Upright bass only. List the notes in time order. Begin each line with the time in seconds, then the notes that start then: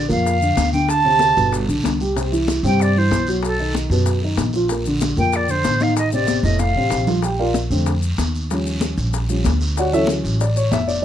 0.10 F2
0.57 D2
1.37 G1
1.69 B1
1.85 C2
2.63 G2
3.11 B1
3.90 F#2
4.37 A#1
5.17 F2
5.65 A1
6.43 F1
6.76 A1
6.92 A#1
7.70 F2
8.18 D#2
8.98 A#1
9.46 D2
10.24 A1
10.72 F1